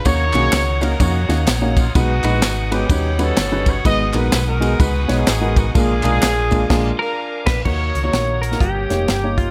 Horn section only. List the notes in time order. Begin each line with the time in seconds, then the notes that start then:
0.05 F#4 A#4 C#5
0.82 A#4
1.00 A#3 C#4 F#4
1.77 F4
1.96 D#4 F#4
2.72 B3 C#4 G4
3.20 C#4 F#4 A4
3.68 C#5
3.86 F#4 B4 D#5
4.14 B4
4.33 B4
4.47 D#4 F#4 A#4
4.79 D#4 F#4 B4
5.18 B3 D#4 G#4
5.57 F#4
5.76 D4 F4 G#4
7.00 D4 F4 A#4
7.48 B4
7.66 F#4 A#4 C#5
8.42 A#4
8.61 A#3 C#4 G4
9.38 F4